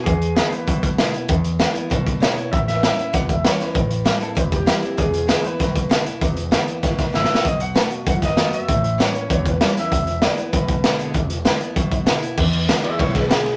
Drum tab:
CC |------------------------|------------------------|------------------------|------------------------|
RD |------------------------|------------------------|------------------------|------------------------|
HH |x--x--x--x--x--x--x--x--|x--x--x--x--x--x--x--x--|x--x--x--x--x--x--x--x--|x--x--x--x--x--x--x--x--|
SD |------o-----------o-----|------o-----------o-----|---o--o-----o-----o--o--|------o-----------o-----|
BD |o-----------o--o--------|o-----------o--o--------|o-----------o--o--------|o-----------o--o--------|

CC |------------------------|------------------------|------------------------|------------------------|
RD |------------------------|------------------------|------------------------|------------------------|
HH |x--x--x--x--x--x--x--x--|x--x--x--x--x--x--------|x--x--x--x--x--x--x--x--|x--x--x--x--x--x--x--x--|
SD |------o-----o-----o-----|------o-----o--o--o-o-o-|------o--------o--o-----|------o-----------o--o--|
BD |o-----------o--o--------|o-----------o--o--------|o-----------o--o--------|o-----------o--o--------|

CC |------------------------|------------------------|x-----------------------|
RD |------------------------|------------------------|---x--x--x--x--x--x--x--|
HH |x--x--x--x--x--x--x--x--|x--x--x--x--x--x--x--x--|------------------------|
SD |------o-----------o-----|------o-----------o-----|------o--------o--o--o--|
BD |o-----------o--o--------|o-----------o--o--------|o-----------o--o--------|